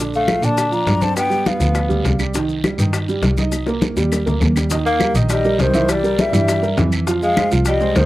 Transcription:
Already playing: double bass A#1, upright piano D3 D4
0.13 tenor saxophone A3, flute F5, high conga, maracas
0.27 upright piano F3 F4, high bongo, high conga, short guiro, claves, maracas
0.41 double bass A#2, upright piano D3 D4, tenor saxophone D4, flute A5, high conga, short guiro, maracas
0.57 high bongo, high conga, long guiro, claves, maracas
0.71 upright piano F3 F4, tenor saxophone D4, flute A#5, high conga, maracas
0.86 double bass G2, high bongo, low bongo, high conga, short guiro, maracas
0.99 tenor saxophone C4, upright piano D4 D5, flute A5, high conga, short guiro, maracas
1.16 tenor saxophone B3, flute G5, high bongo, high conga, long guiro, claves, maracas
1.30 upright piano G3 G4, high bongo, high conga, maracas
1.46 tenor saxophone B3, flute F5, high bongo, high conga, short guiro, maracas
1.58 double bass D2, upright piano F3 F4, high bongo, high conga, short guiro, maracas
1.75 high bongo, high conga, long guiro, claves, maracas
1.89 double bass D2, upright piano G3 G4, high bongo, high conga, maracas
2.04 double bass C2, high bongo, low bongo, high conga, short guiro, maracas
2.19 upright piano G3 G4, short guiro, claves, maracas
2.34 upright piano D#3 D#4, high bongo, high conga, long guiro, maracas
2.49 high conga, maracas
2.64 upright piano G3 G4, high bongo, high conga, short guiro, claves, maracas
2.78 double bass G2, upright piano D#3 D#4, high conga, short guiro, maracas
2.93 high bongo, high conga, long guiro, claves, maracas
3.08 upright piano G3 G4, high conga, maracas
3.22 double bass C2, high bongo, low bongo, high conga, short guiro, maracas
3.37 upright piano D#4 D#5, high conga, short guiro, maracas
3.52 high bongo, high conga, long guiro, claves, maracas
3.66 upright piano A#3 A#4, high bongo, high conga, maracas
3.81 high bongo, high conga, short guiro, maracas
3.96 double bass D#2, upright piano G3 G4, high bongo, high conga, short guiro, maracas
4.12 low bongo, high conga, long guiro, claves, maracas
4.26 double bass D2, upright piano A#3 A#4, low bongo, high conga, maracas
4.40 double bass D#2, low bongo, high conga, short guiro, maracas
4.55 upright piano G3 G4, low bongo, high conga, short guiro, claves, maracas
4.70 upright piano D#3 D#4 D#5, high bongo, high conga, long guiro, maracas
4.86 tenor saxophone A#3, flute F5, high conga, maracas
4.99 upright piano G3 G4 A#4, high bongo, high conga, short guiro, claves, maracas
5.15 double bass A#1, upright piano D#3 D#4 D#5, high conga, short guiro, maracas
5.29 tenor saxophone G3, flute D#5, high bongo, high conga, long guiro, claves, maracas
5.44 upright piano G3 G4 A#4, high conga, maracas
5.59 double bass C2, tenor saxophone D#3, flute C5, high bongo, low bongo, high conga, short guiro, maracas
5.74 upright piano E3 E4 E5, high conga, short guiro, maracas
5.88 tenor saxophone G3, flute D5, high bongo, high conga, long guiro, claves, maracas
6.03 upright piano G3 G4 A#4, high bongo, high conga, maracas
6.18 tenor saxophone G3, flute E5, high bongo, high conga, short guiro, maracas
6.32 double bass G2, upright piano E3 E4 E5, high bongo, high conga, short guiro, maracas
6.48 high bongo, high conga, long guiro, claves, maracas
6.62 upright piano G3 G4 A#4, high bongo, high conga, maracas
6.77 double bass F2, upright piano E3 E4 E5, high bongo, low bongo, high conga, short guiro, maracas
6.92 high conga, short guiro, claves, maracas
7.07 upright piano F3 F4 F5, high bongo, high conga, long guiro, maracas
7.22 tenor saxophone G#3, flute F5, high conga, maracas
7.36 upright piano G#3 G#4 C5, high bongo, high conga, short guiro, claves, maracas
7.51 double bass C2, upright piano F3 F4 F5, high conga, short guiro, maracas
7.65 tenor saxophone G3, flute D#5, high bongo, high conga, long guiro, claves, maracas
7.80 upright piano G#3 G#4 C5, high conga, maracas
7.95 double bass D2, tenor saxophone D#3, flute C5, high bongo, low bongo, high conga, short guiro, maracas

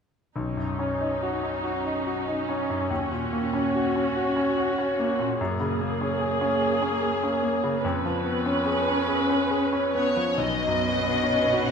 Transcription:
0.36 grand piano B1, viola section C#4 D#4
0.57 grand piano F#2
0.79 grand piano C#4
1.01 grand piano D#4
1.23 grand piano F#4
1.44 grand piano D#4
1.63 grand piano F#4
1.85 grand piano D#4
2.07 grand piano F#4
2.27 grand piano D#4
2.49 grand piano C#4
2.70 grand piano F#2
2.90 grand piano D#2, viola section F#4
3.12 grand piano A#2
3.33 grand piano A#3
3.53 grand piano C#4
3.75 grand piano F#4
3.96 grand piano C#4
4.16 grand piano F#4
4.36 grand piano C#4
4.57 grand piano F#4
4.78 grand piano C#4
4.99 grand piano A#3
5.19 grand piano A#2
5.39 grand piano F#2, viola section A#3 G#4
5.60 grand piano C#3
5.81 grand piano A#3
6.01 grand piano C#4
6.21 grand piano G#4
6.41 grand piano C#4
6.62 grand piano G#4
6.82 grand piano C#4
7.03 grand piano G#4
7.23 grand piano C#4
7.43 grand piano A#3
7.64 grand piano C#3
7.83 grand piano F2, viola section C#4 B4
8.05 grand piano F3
8.25 grand piano B3
8.46 grand piano C#4
8.66 grand piano G#4
8.88 grand piano C#4
9.08 grand piano G#4
9.30 grand piano C#4
9.50 grand piano G#4
9.73 grand piano C#4
9.95 grand piano B3, violin section C#5
10.16 grand piano F3
10.38 grand piano B1, cello section B2, viola section C#4 B4, violin section D#5
10.67 grand piano F#2
10.95 grand piano B3
11.23 grand piano C#4
11.53 grand piano F#4
11.68 violin section F#5

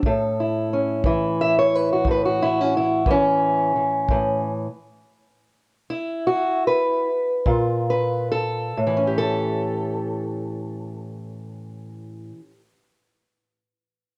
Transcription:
0.03 steel-string acoustic guitar A2 A4, kick
0.40 steel-string acoustic guitar E4
0.73 steel-string acoustic guitar C#4
1.04 steel-string acoustic guitar E3 E4, kick
1.41 steel-string acoustic guitar E5
1.59 steel-string acoustic guitar C#5
1.75 steel-string acoustic guitar B4
1.93 steel-string acoustic guitar F#4
2.05 steel-string acoustic guitar A2, kick
2.11 steel-string acoustic guitar B4
2.25 steel-string acoustic guitar F#4
2.42 steel-string acoustic guitar E4
2.61 steel-string acoustic guitar C#4
2.77 steel-string acoustic guitar E4
3.06 steel-string acoustic guitar E3, kick
3.11 steel-string acoustic guitar C#4
3.76 steel-string acoustic guitar E3
4.09 steel-string acoustic guitar A2 E3, kick
5.90 steel-string acoustic guitar E4
6.27 steel-string acoustic guitar F#4
6.67 steel-string acoustic guitar B4
7.46 steel-string acoustic guitar A#2 F4, kick
7.90 steel-string acoustic guitar B4
8.32 steel-string acoustic guitar A4
8.77 steel-string acoustic guitar A2
8.87 steel-string acoustic guitar E3
8.97 steel-string acoustic guitar C#4
9.07 steel-string acoustic guitar G4
9.18 steel-string acoustic guitar A4

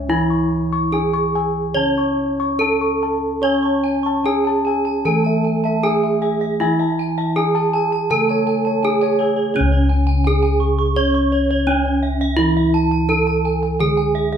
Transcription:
Already playing: kettle gongs C#2
0.09 bronze metallophone E3 E4, kettle gongs E4 G#5
0.30 kettle gongs C#6
0.73 kettle gongs C#6
0.92 kettle gongs D4 G#5, bronze metallophone G#4
1.14 kettle gongs C#6
1.35 kettle gongs G#5
1.74 kettle gongs C#3 A5, bronze metallophone C#4 C#5
1.98 kettle gongs C#6
2.40 kettle gongs C#6
2.59 kettle gongs D4 A5, bronze metallophone A4
2.81 kettle gongs C#6
3.03 kettle gongs A5
3.42 bronze metallophone C#4 C#5 C#6, kettle gongs C#5 G#5
3.63 kettle gongs A5, bronze metallophone C#6
3.84 bronze metallophone G#5
4.03 kettle gongs A5, bronze metallophone C#6
4.24 kettle gongs D4 G#5, bronze metallophone G#4 G#5
4.45 bronze metallophone G#5, kettle gongs A5
4.65 kettle gongs G#5, bronze metallophone A5
4.85 bronze metallophone A5
5.05 kettle gongs E3 G#5, bronze metallophone A3 A4 A5
5.24 kettle gongs E5, bronze metallophone A5
5.45 bronze metallophone G#5
5.64 kettle gongs E5, bronze metallophone A5
5.83 kettle gongs D4 G#5, bronze metallophone G#4 G#5
6.03 kettle gongs E5, bronze metallophone G#5
6.22 bronze metallophone E5, kettle gongs G#5
6.41 bronze metallophone E5
6.60 bronze metallophone E3 E4 E5, kettle gongs E4 G#5
6.79 bronze metallophone E5, kettle gongs A5
6.99 bronze metallophone G#5
7.18 bronze metallophone E5, kettle gongs A5
7.36 kettle gongs D4 G#5, bronze metallophone G#4 G#5
7.55 bronze metallophone G#5, kettle gongs A5
7.73 kettle gongs G#5, bronze metallophone A5
7.92 bronze metallophone A5
8.10 kettle gongs C#3 G#5, bronze metallophone A3 A4 A5
8.29 kettle gongs C#5, bronze metallophone A5
8.47 bronze metallophone G#5
8.65 kettle gongs C#5, bronze metallophone A5
8.83 kettle gongs D4 G#5, bronze metallophone G#4 G#5
9.01 kettle gongs C#5, bronze metallophone G#5
9.19 bronze metallophone C#5, kettle gongs G#5
9.36 bronze metallophone C#5
9.54 bronze metallophone C#3 C#4 C#5, kettle gongs C#4
9.60 kettle gongs C#2
9.72 bronze metallophone C#5
9.89 bronze metallophone G#5
10.07 bronze metallophone G#5
10.24 kettle gongs D4, bronze metallophone G#4 G#5
10.43 bronze metallophone G#5
10.60 bronze metallophone C#6
10.79 bronze metallophone C#6
10.96 bronze metallophone C#4 C#5 C#6
11.14 bronze metallophone C#6
11.32 bronze metallophone C#5
11.51 bronze metallophone C#5
11.67 bronze metallophone C#4 C#5, kettle gongs D4
11.85 bronze metallophone C#5
12.03 bronze metallophone E5
12.21 bronze metallophone E5
12.37 bronze metallophone E3 E4 E5, kettle gongs E4
12.57 bronze metallophone E5
12.74 bronze metallophone A5
12.91 bronze metallophone A5
13.08 kettle gongs D4, bronze metallophone A4 A5
13.27 bronze metallophone A5
13.45 bronze metallophone G#5
13.63 bronze metallophone G#5
13.80 kettle gongs D3, bronze metallophone G#3 G#4 G#5
13.97 bronze metallophone G#5
14.15 bronze metallophone E5
14.33 bronze metallophone E5

